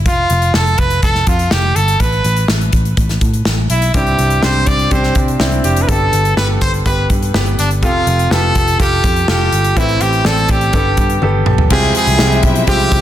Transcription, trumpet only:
0, 0, Header, 1, 2, 480
1, 0, Start_track
1, 0, Tempo, 485437
1, 57, Time_signature, 4, 2, 24, 8
1, 12865, End_track
2, 0, Start_track
2, 0, Title_t, "Trumpet"
2, 0, Program_c, 0, 56
2, 68, Note_on_c, 0, 65, 90
2, 544, Note_on_c, 0, 69, 86
2, 559, Note_off_c, 0, 65, 0
2, 777, Note_on_c, 0, 71, 88
2, 792, Note_off_c, 0, 69, 0
2, 1018, Note_off_c, 0, 71, 0
2, 1022, Note_on_c, 0, 69, 87
2, 1264, Note_on_c, 0, 65, 77
2, 1279, Note_off_c, 0, 69, 0
2, 1503, Note_on_c, 0, 67, 86
2, 1518, Note_off_c, 0, 65, 0
2, 1736, Note_on_c, 0, 69, 81
2, 1750, Note_off_c, 0, 67, 0
2, 1978, Note_on_c, 0, 71, 77
2, 1993, Note_off_c, 0, 69, 0
2, 2458, Note_off_c, 0, 71, 0
2, 3663, Note_on_c, 0, 64, 67
2, 3884, Note_off_c, 0, 64, 0
2, 3904, Note_on_c, 0, 67, 82
2, 4385, Note_on_c, 0, 72, 86
2, 4399, Note_off_c, 0, 67, 0
2, 4618, Note_on_c, 0, 74, 80
2, 4633, Note_off_c, 0, 72, 0
2, 4862, Note_on_c, 0, 72, 84
2, 4877, Note_off_c, 0, 74, 0
2, 5101, Note_off_c, 0, 72, 0
2, 5578, Note_on_c, 0, 67, 71
2, 5757, Note_on_c, 0, 71, 65
2, 5771, Note_off_c, 0, 67, 0
2, 5816, Note_on_c, 0, 69, 86
2, 5830, Note_off_c, 0, 71, 0
2, 6291, Note_off_c, 0, 69, 0
2, 6297, Note_on_c, 0, 71, 84
2, 6406, Note_off_c, 0, 71, 0
2, 6540, Note_on_c, 0, 72, 85
2, 6648, Note_off_c, 0, 72, 0
2, 6781, Note_on_c, 0, 71, 84
2, 7003, Note_off_c, 0, 71, 0
2, 7509, Note_on_c, 0, 62, 81
2, 7615, Note_off_c, 0, 62, 0
2, 7748, Note_on_c, 0, 65, 95
2, 8224, Note_on_c, 0, 69, 96
2, 8239, Note_off_c, 0, 65, 0
2, 8699, Note_off_c, 0, 69, 0
2, 8705, Note_on_c, 0, 67, 99
2, 9149, Note_off_c, 0, 67, 0
2, 9188, Note_on_c, 0, 67, 89
2, 9666, Note_on_c, 0, 64, 85
2, 9680, Note_off_c, 0, 67, 0
2, 9901, Note_on_c, 0, 67, 84
2, 9916, Note_off_c, 0, 64, 0
2, 10149, Note_on_c, 0, 69, 88
2, 10164, Note_off_c, 0, 67, 0
2, 10390, Note_on_c, 0, 67, 80
2, 10405, Note_off_c, 0, 69, 0
2, 11103, Note_off_c, 0, 67, 0
2, 11589, Note_on_c, 0, 68, 112
2, 11807, Note_off_c, 0, 68, 0
2, 11830, Note_on_c, 0, 68, 109
2, 12269, Note_off_c, 0, 68, 0
2, 12544, Note_on_c, 0, 67, 112
2, 12865, Note_off_c, 0, 67, 0
2, 12865, End_track
0, 0, End_of_file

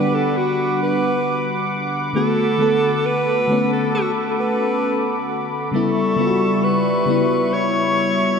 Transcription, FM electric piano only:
0, 0, Header, 1, 2, 480
1, 0, Start_track
1, 0, Key_signature, 2, "minor"
1, 0, Tempo, 895522
1, 1153, Time_signature, 4, 2, 24, 8
1, 4500, End_track
2, 0, Start_track
2, 0, Title_t, "FM electric piano"
2, 0, Program_c, 0, 5
2, 0, Control_c, 0, 64, 127
2, 0, Note_on_c, 0, 50, 72
2, 0, Note_on_c, 0, 55, 69
2, 0, Note_on_c, 0, 59, 69
2, 0, Note_on_c, 0, 62, 83
2, 0, Note_on_c, 0, 66, 80
2, 765, Note_off_c, 0, 50, 0
2, 769, Note_off_c, 0, 55, 0
2, 774, Note_off_c, 0, 59, 0
2, 777, Note_off_c, 0, 62, 0
2, 1142, Note_on_c, 0, 50, 68
2, 1150, Note_on_c, 0, 57, 67
2, 1158, Note_on_c, 0, 59, 62
2, 1160, Control_c, 0, 64, 0
2, 1164, Note_off_c, 0, 66, 0
2, 1167, Note_on_c, 0, 66, 77
2, 1256, Control_c, 0, 64, 127
2, 1352, Note_off_c, 0, 50, 0
2, 1356, Note_off_c, 0, 57, 0
2, 1360, Note_off_c, 0, 59, 0
2, 1364, Note_off_c, 0, 66, 0
2, 1383, Note_on_c, 0, 50, 70
2, 1391, Note_on_c, 0, 57, 67
2, 1398, Note_on_c, 0, 59, 70
2, 1406, Note_on_c, 0, 69, 78
2, 1797, Note_off_c, 0, 50, 0
2, 1801, Note_off_c, 0, 57, 0
2, 1804, Note_off_c, 0, 59, 0
2, 1808, Note_off_c, 0, 69, 0
2, 1863, Note_on_c, 0, 50, 71
2, 1870, Note_on_c, 0, 57, 65
2, 1878, Note_on_c, 0, 59, 66
2, 1887, Note_on_c, 0, 61, 78
2, 2685, Note_off_c, 0, 50, 0
2, 2689, Note_off_c, 0, 57, 0
2, 2693, Note_off_c, 0, 59, 0
2, 2697, Note_off_c, 0, 61, 0
2, 3063, Note_on_c, 0, 49, 68
2, 3071, Note_on_c, 0, 55, 65
2, 3079, Note_on_c, 0, 59, 64
2, 3081, Control_c, 0, 64, 0
2, 3087, Note_on_c, 0, 64, 77
2, 3178, Control_c, 0, 64, 127
2, 3272, Note_off_c, 0, 49, 0
2, 3276, Note_off_c, 0, 55, 0
2, 3280, Note_off_c, 0, 59, 0
2, 3284, Note_off_c, 0, 64, 0
2, 3302, Note_on_c, 0, 49, 73
2, 3310, Note_on_c, 0, 55, 69
2, 3318, Note_on_c, 0, 59, 66
2, 3326, Note_on_c, 0, 65, 62
2, 3355, Note_off_c, 0, 65, 0
2, 3361, Note_on_c, 0, 66, 84
2, 3716, Note_off_c, 0, 49, 0
2, 3720, Note_off_c, 0, 55, 0
2, 3725, Note_off_c, 0, 59, 0
2, 3746, Note_off_c, 0, 66, 0
2, 3782, Note_on_c, 0, 49, 70
2, 3790, Note_on_c, 0, 55, 66
2, 3798, Note_on_c, 0, 59, 67
2, 3807, Note_on_c, 0, 64, 82
2, 4500, Note_off_c, 0, 49, 0
2, 4500, Note_off_c, 0, 55, 0
2, 4500, Note_off_c, 0, 59, 0
2, 4500, Note_off_c, 0, 64, 0
2, 4500, End_track
0, 0, End_of_file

